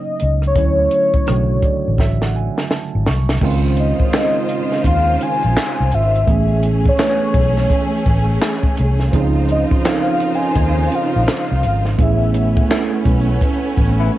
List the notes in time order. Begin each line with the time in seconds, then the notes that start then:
Already playing: C#3 F#3 A#3 B3 C#4 D#5
0.20 C#2, closed hi-hat
0.42 cross-stick, closed hi-hat
0.47 C#5
0.55 D2 D3 F#3 A3 C#4 E4, kick, closed hi-hat
0.91 closed hi-hat
1.14 kick, closed hi-hat
1.27 B1 C#3 D3 F#3 A3 F#4, cross-stick, closed hi-hat
1.62 D5, kick, closed hi-hat
1.88 A1
1.98 E5, kick, snare
2.22 F#5, snare
2.36 G#5
2.58 snare
2.71 A5, snare
2.95 G#1
3.06 C2 C#6, snare
3.29 snare
3.41 C#2 C#3 D#3 G#3 C4 C#4 F4 C5, kick, crash
3.77 D#5, closed hi-hat
4.00 kick
4.13 D#3 G#3 C4 C#4 D#4, snare, clap, closed hi-hat
4.49 closed hi-hat
4.72 snare
4.84 D#2 F5, kick, closed hi-hat
5.21 G#5, closed hi-hat
5.43 A#1, closed hi-hat
5.57 snare, clap, closed hi-hat
5.80 C2
5.92 G#1 E5, closed hi-hat
6.16 closed hi-hat
6.27 A1 E3 A3 B3 C#4 G#4, kick, closed hi-hat
6.63 closed hi-hat
6.85 C#5, kick, closed hi-hat
6.98 E3 A3 B3 C#4 B4, snare, clap, closed hi-hat
7.34 B1, kick, closed hi-hat
7.57 snare, closed hi-hat
7.70 kick, closed hi-hat
8.06 A1, kick, closed hi-hat
8.42 snare, clap, closed hi-hat
8.63 kick
8.77 C2, closed hi-hat
9.00 snare
9.12 C#2 C#3 F3 C4 C#4 D#4 F4 G#4 C5, kick, closed hi-hat
9.49 D#5, closed hi-hat
9.71 kick
9.84 F3 C4 C#4 D#4 A4, snare, clap, closed hi-hat
9.88 F5
9.94 A#4
10.20 closed hi-hat
10.35 G#5
10.43 closed hi-hat
10.56 D#2, kick, closed hi-hat
10.92 F5, closed hi-hat
11.16 A#1
11.28 snare, clap, closed hi-hat
11.51 C2
11.63 G#1, closed hi-hat
11.85 snare
11.98 A1 A3 B3 C#4 E4 G#4, kick, closed hi-hat
12.02 E5
12.34 closed hi-hat
12.57 kick, closed hi-hat
12.69 A3 B3 C#4 E4 A4, snare, clap, closed hi-hat
13.05 B1, kick, closed hi-hat
13.41 kick, closed hi-hat
13.77 A1, kick, closed hi-hat
14.00 C#3 B3 E4